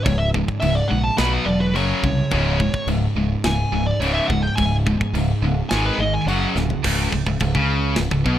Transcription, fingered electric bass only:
0.06 0.42 C#1 loud
0.63 0.81 C#1 loud
0.91 1.09 A#1 medium
1.19 1.37 B1 medium
1.46 1.74 E1 medium
1.74 1.93 F#1 medium
2.03 2.21 C2 medium
2.32 2.68 C#1 loud
2.87 3.06 C#1 loud
3.15 3.34 C#1 loud
3.45 3.63 C#1 loud
3.73 3.91 C#1 medium
4.00 4.19 C#1 medium
4.29 4.48 C#1 medium
4.58 4.94 C#1 loud
5.14 5.32 C#1 loud
5.42 5.61 C#1 loud
5.72 5.90 G#1 medium
5.98 6.17 G#1 medium
6.26 6.45 F#1 loud
6.56 6.74 D1 medium
6.85 7.11 C#1 loud
7.13 7.26 C#1 medium
7.27 7.40 C#1 medium
7.41 7.54 C#1 loud
7.55 7.95 C#2 medium
7.97 8.11 C#1 medium
8.12 8.25 C#1 medium
8.25 8.39 B1 medium

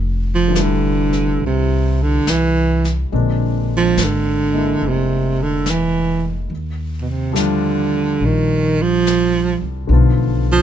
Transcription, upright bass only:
0.00 1.35 F1 medium
1.39 2.21 C2 medium
2.27 3.07 C2 medium
3.13 3.93 A#1 medium
3.96 4.77 G#1 medium
4.81 6.46 F1 medium
6.50 8.16 D#2 medium
8.20 9.58 A#1 medium
9.62 9.88 C2 medium
9.89 10.62 B1 medium

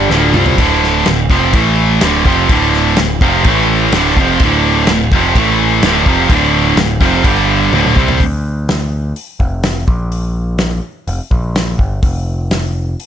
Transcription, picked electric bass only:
0.10 0.32 D1 medium
0.33 0.56 C2 loud
0.57 1.03 D1 medium
1.06 1.29 D1 medium
1.30 1.52 F1 medium
1.53 1.98 A1 medium
2.01 2.24 D1 medium
2.24 2.47 F1 medium
2.49 2.94 D1 medium
2.98 3.20 D1 medium
3.21 3.43 F1 medium
3.45 3.89 A1 medium
3.92 4.15 D1 loud
4.16 4.38 F1 loud
4.40 4.84 D1 medium
4.88 5.10 D1 medium
5.12 5.34 F1 medium
5.35 5.80 A1 medium
5.82 6.05 D1 loud
6.06 6.29 F1 medium
6.29 6.74 D1 medium
6.76 6.99 D1 medium
7.00 7.23 F1 medium
7.24 7.69 G1 medium
7.72 7.95 D1 medium
7.96 8.19 C2 loud
8.20 9.12 D2 medium
9.40 9.85 F1 medium
9.88 10.80 A#1 medium
11.08 11.19 F1 medium
11.31 11.76 A#1 medium
11.78 12.01 G1 medium
12.03 12.94 F1 medium

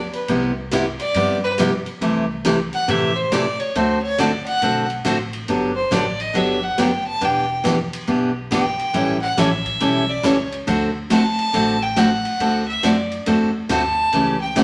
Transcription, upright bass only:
0.00 0.11 D2 medium
0.28 0.98 C2 medium
1.15 1.84 G2 medium
2.01 2.71 C2 medium
2.88 3.58 A2 medium
3.76 4.45 D2 medium
4.62 4.98 B1 medium
5.05 5.42 A1 medium
5.49 5.83 G1 medium
5.91 6.28 A1 medium
6.34 6.71 G1 medium
6.78 7.15 F#1 medium
7.21 7.91 E1 medium
8.08 8.77 B1 medium
8.94 9.29 A1 medium
9.38 9.75 A1 medium
9.81 10.18 B1 medium
10.24 10.61 C#2 medium
10.67 11.36 D2 medium
11.54 12.23 A1 medium
12.40 12.74 D2 medium
12.83 13.20 F#2 medium
13.27 13.63 E2 medium
13.69 14.06 D2 medium
14.13 14.64 C#2 medium

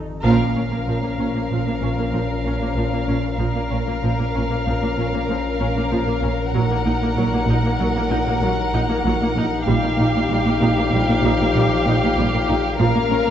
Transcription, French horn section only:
0.24 3.36 F3 soft
0.24 3.36 C#4 soft
3.40 6.50 F3 soft
3.40 6.50 C#4 soft
6.55 9.51 F#3 soft
6.55 12.76 D#4 medium
9.68 12.76 F3 medium
12.79 13.30 F3 medium
12.79 13.30 C#4 medium

